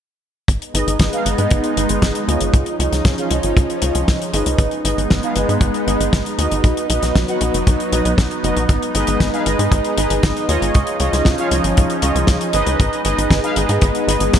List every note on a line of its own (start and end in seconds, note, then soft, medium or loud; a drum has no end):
0.48 0.58 G#1 medium
0.48 2.52 G#3 medium
0.48 2.52 B3 medium
0.48 2.52 D#4 medium
0.48 kick loud
0.48 closed hi-hat medium
0.62 closed hi-hat soft
0.74 0.84 G#1 medium
0.74 1.10 D#4 medium
0.74 1.10 G#4 medium
0.74 1.10 B4 medium
0.74 1.10 D#5 loud
0.74 closed hi-hat loud
0.87 0.97 G#1 medium
0.87 closed hi-hat medium
0.99 1.09 G#1 loud
0.99 kick loud
0.99 snare loud
0.99 closed hi-hat medium
1.13 1.24 D#4 medium
1.13 1.24 G#4 medium
1.13 1.24 B4 medium
1.13 1.24 F5 loud
1.13 closed hi-hat soft
1.25 1.35 G#1 medium
1.25 1.74 D#4 medium
1.25 1.74 G#4 medium
1.25 1.74 B4 medium
1.25 1.74 D#5 medium
1.25 closed hi-hat medium
1.38 1.48 G#2 medium
1.38 closed hi-hat medium
1.50 1.61 G#1 loud
1.50 kick loud
1.50 closed hi-hat medium
1.64 closed hi-hat soft
1.77 1.87 G#1 medium
1.77 2.25 D#4 medium
1.77 2.25 G#4 medium
1.77 2.25 B4 medium
1.77 2.25 D#5 medium
1.77 closed hi-hat medium
1.89 1.99 G#1 medium
1.89 closed hi-hat medium
2.02 2.12 G#1 loud
2.02 kick medium
2.02 snare loud
2.02 closed hi-hat medium
2.15 closed hi-hat soft
2.28 2.38 D#2 medium
2.28 2.76 F4 medium
2.28 2.76 G#4 medium
2.28 2.76 C#5 medium
2.28 2.76 D#5 loud
2.28 closed hi-hat medium
2.41 2.51 G#1 medium
2.41 closed hi-hat medium
2.54 2.63 C#2 medium
2.54 4.57 F3 medium
2.54 4.57 C#4 medium
2.54 14.39 D#4 medium
2.54 kick loud
2.54 closed hi-hat medium
2.66 closed hi-hat soft
2.79 2.89 C#2 medium
2.79 3.15 F4 medium
2.79 3.15 G#4 medium
2.79 3.15 C#5 medium
2.79 3.15 D#5 loud
2.79 closed hi-hat medium
2.92 3.02 C#2 medium
2.92 snare soft
2.92 closed hi-hat medium
3.05 3.15 C#2 loud
3.05 kick loud
3.05 snare loud
3.05 closed hi-hat medium
3.18 3.29 F4 medium
3.18 3.29 G#4 medium
3.18 3.29 C#5 medium
3.18 3.29 F5 loud
3.18 closed hi-hat soft
3.31 3.40 C#2 medium
3.31 3.79 F4 medium
3.31 3.79 G#4 medium
3.31 3.79 C#5 medium
3.31 3.79 D#5 medium
3.31 closed hi-hat medium
3.43 3.53 G#1 medium
3.43 closed hi-hat medium
3.57 3.66 C#2 loud
3.57 kick loud
3.57 closed hi-hat medium
3.70 closed hi-hat soft
3.82 3.92 C#2 medium
3.82 4.30 F4 medium
3.82 4.30 G#4 medium
3.82 4.30 C#5 medium
3.82 4.30 D#5 medium
3.82 closed hi-hat medium
3.95 4.05 C#2 medium
3.95 closed hi-hat medium
4.08 4.18 C#2 loud
4.08 kick medium
4.08 snare loud
4.08 closed hi-hat medium
4.22 closed hi-hat soft
4.33 4.43 G#1 medium
4.33 4.82 D#4 medium
4.33 4.82 G#4 medium
4.33 4.82 B4 medium
4.33 4.82 D#5 loud
4.33 closed hi-hat loud
4.46 4.56 C#2 medium
4.46 closed hi-hat medium
4.58 4.68 G#1 loud
4.58 6.62 G#3 medium
4.58 6.62 B3 medium
4.58 kick loud
4.58 closed hi-hat medium
4.71 closed hi-hat soft
4.85 4.94 G#1 medium
4.85 5.20 D#4 medium
4.85 5.20 G#4 medium
4.85 5.20 B4 medium
4.85 5.20 D#5 loud
4.85 closed hi-hat loud
4.97 5.07 G#1 medium
4.97 closed hi-hat medium
5.10 5.20 G#1 loud
5.10 kick medium
5.10 snare loud
5.10 closed hi-hat medium
5.23 5.34 D#4 medium
5.23 5.34 G#4 medium
5.23 5.34 B4 medium
5.23 5.34 F5 loud
5.23 closed hi-hat soft
5.36 5.46 G#1 medium
5.36 5.84 D#4 medium
5.36 5.84 G#4 medium
5.36 5.84 B4 medium
5.36 5.84 D#5 medium
5.36 closed hi-hat medium
5.49 5.58 G#2 medium
5.49 closed hi-hat medium
5.61 5.71 G#1 loud
5.61 kick loud
5.61 closed hi-hat medium
5.74 closed hi-hat soft
5.87 5.97 G#1 medium
5.87 6.35 D#4 medium
5.87 6.35 G#4 medium
5.87 6.35 B4 medium
5.87 6.35 D#5 medium
5.87 closed hi-hat medium
6.00 6.10 G#1 medium
6.00 closed hi-hat medium
6.13 6.22 G#1 loud
6.13 kick loud
6.13 snare loud
6.13 closed hi-hat medium
6.26 closed hi-hat soft
6.38 6.48 D#2 medium
6.38 6.87 D#4 loud
6.38 6.87 F#4 medium
6.38 6.87 B4 medium
6.38 6.87 D#5 loud
6.38 closed hi-hat medium
6.51 6.61 G#1 medium
6.51 closed hi-hat medium
6.64 6.74 B1 loud
6.64 8.67 F#3 medium
6.64 10.70 B3 medium
6.64 kick loud
6.64 closed hi-hat medium
6.77 closed hi-hat soft
6.90 6.99 B1 medium
6.90 7.25 D#4 medium
6.90 7.25 F#4 medium
6.90 7.25 B4 medium
6.90 7.25 D#5 loud
6.90 closed hi-hat medium
7.02 7.12 B1 medium
7.02 snare soft
7.02 closed hi-hat medium
7.15 7.25 B1 loud
7.15 kick loud
7.15 snare loud
7.15 closed hi-hat medium
7.28 7.39 D#4 medium
7.28 7.39 F#4 medium
7.28 7.39 B4 medium
7.28 7.39 F#5 loud
7.28 closed hi-hat soft
7.41 7.51 B1 medium
7.41 7.89 D#4 medium
7.41 7.89 F#4 medium
7.41 7.89 B4 medium
7.41 7.89 D#5 medium
7.41 closed hi-hat medium
7.54 7.63 F#1 medium
7.54 closed hi-hat medium
7.67 7.76 B1 loud
7.67 kick loud
7.67 closed hi-hat medium
7.80 closed hi-hat soft
7.92 8.02 B1 medium
7.92 8.12 D#4 medium
7.92 8.12 F#4 medium
7.92 8.12 B4 medium
7.92 8.12 D#5 loud
7.92 closed hi-hat medium
8.05 8.15 B1 medium
8.05 closed hi-hat medium
8.18 8.28 B1 loud
8.18 kick loud
8.18 snare loud
8.18 closed hi-hat medium
8.31 closed hi-hat soft
8.44 8.53 F#1 loud
8.44 8.63 D#4 medium
8.44 8.64 F#4 medium
8.44 8.63 B4 medium
8.44 8.64 D#5 loud
8.44 closed hi-hat medium
8.56 8.66 B1 medium
8.56 closed hi-hat medium
8.69 8.79 G#1 loud
8.69 10.72 G#3 medium
8.69 kick loud
8.69 closed hi-hat medium
8.83 closed hi-hat soft
8.95 9.05 G#1 medium
8.95 9.30 D#4 medium
8.95 9.30 G#4 medium
8.95 9.30 B4 medium
8.95 9.30 D#5 loud
8.95 closed hi-hat medium
9.07 9.17 G#1 medium
9.07 closed hi-hat medium
9.20 9.30 G#1 loud
9.20 kick loud
9.20 snare loud
9.20 closed hi-hat medium
9.33 9.44 D#4 medium
9.33 9.44 G#4 medium
9.33 9.44 B4 medium
9.33 9.44 F5 loud
9.33 closed hi-hat soft
9.46 9.56 G#1 medium
9.46 9.94 D#4 medium
9.46 9.94 G#4 medium
9.46 9.94 B4 medium
9.46 9.94 D#5 medium
9.46 closed hi-hat medium
9.59 9.69 G#2 medium
9.59 closed hi-hat medium
9.72 9.81 G#1 loud
9.72 kick loud
9.72 closed hi-hat medium
9.84 closed hi-hat soft
9.97 10.07 G#1 medium
9.97 10.46 D#4 medium
9.97 10.46 G#4 medium
9.97 10.46 B4 medium
9.97 10.46 D#5 medium
9.97 closed hi-hat loud
10.10 10.20 G#1 medium
10.10 closed hi-hat medium
10.23 10.33 G#1 loud
10.23 kick loud
10.23 snare loud
10.23 closed hi-hat medium
10.37 closed hi-hat soft
10.49 10.58 D#2 loud
10.49 10.97 F4 loud
10.49 10.97 G#4 medium
10.49 10.97 C#5 medium
10.49 10.97 D#5 loud
10.49 closed hi-hat medium
10.61 10.71 G#1 medium
10.61 closed hi-hat medium
10.74 10.84 C#2 loud
10.74 12.78 F3 medium
10.74 12.78 C#4 medium
10.74 kick loud
10.74 closed hi-hat medium
10.87 closed hi-hat soft
11.00 11.10 C#2 medium
11.00 11.35 F4 medium
11.00 11.35 G#4 medium
11.00 11.35 C#5 medium
11.00 11.35 D#5 loud
11.00 closed hi-hat medium
11.13 11.22 C#2 medium
11.13 snare soft
11.13 closed hi-hat medium
11.25 11.35 C#2 loud
11.25 kick loud
11.25 snare loud
11.25 closed hi-hat medium
11.38 11.49 F4 loud
11.38 11.49 G#4 medium
11.38 11.49 C#5 medium
11.38 11.49 F5 loud
11.38 closed hi-hat soft
11.51 11.61 C#2 medium
11.51 12.00 F4 medium
11.51 12.00 G#4 medium
11.51 12.00 C#5 medium
11.51 12.00 D#5 medium
11.51 closed hi-hat medium
11.64 11.74 G#1 medium
11.64 closed hi-hat medium
11.77 11.87 C#2 loud
11.77 kick loud
11.77 closed hi-hat medium
11.90 closed hi-hat soft
12.02 12.12 C#2 medium
12.02 12.51 F4 medium
12.02 12.51 G#4 medium
12.02 12.51 C#5 medium
12.02 12.51 D#5 medium
12.02 closed hi-hat loud
12.15 12.25 C#2 medium
12.15 closed hi-hat medium
12.27 12.38 C#2 loud
12.27 kick loud
12.27 snare loud
12.27 closed hi-hat medium
12.41 closed hi-hat soft
12.53 12.63 G#1 loud
12.53 13.02 D#4 loud
12.53 13.02 G#4 medium
12.53 13.02 B4 medium
12.53 13.02 D#5 loud
12.53 closed hi-hat medium
12.67 12.76 C#2 medium
12.67 closed hi-hat medium
12.79 12.89 G#1 loud
12.79 14.39 G#3 medium
12.79 14.39 B3 medium
12.79 kick loud
12.79 closed hi-hat medium
12.93 closed hi-hat soft
13.05 13.15 G#1 medium
13.05 13.41 D#4 medium
13.05 13.41 G#4 medium
13.05 13.40 B4 medium
13.05 13.40 D#5 loud
13.05 closed hi-hat loud
13.18 13.28 G#1 medium
13.18 closed hi-hat medium
13.30 13.40 G#1 loud
13.30 kick loud
13.30 snare loud
13.30 closed hi-hat medium
13.43 13.54 D#4 loud
13.43 13.54 G#4 medium
13.43 13.54 B4 medium
13.43 13.54 F5 loud
13.43 closed hi-hat soft
13.56 13.66 G#1 medium
13.56 14.05 D#4 medium
13.56 14.05 G#4 medium
13.56 14.05 B4 medium
13.56 14.05 D#5 medium
13.56 closed hi-hat medium
13.69 13.79 G#2 medium
13.69 closed hi-hat medium
13.81 13.92 G#1 loud
13.81 kick loud
13.81 closed hi-hat medium
13.95 closed hi-hat soft
14.08 14.17 G#1 medium
14.08 14.39 D#4 medium
14.08 14.39 G#4 medium
14.08 14.39 B4 medium
14.08 14.39 D#5 medium
14.08 closed hi-hat loud
14.20 14.30 G#1 medium
14.20 closed hi-hat medium
14.33 14.39 G#1 loud
14.33 kick loud
14.33 snare loud
14.33 closed hi-hat medium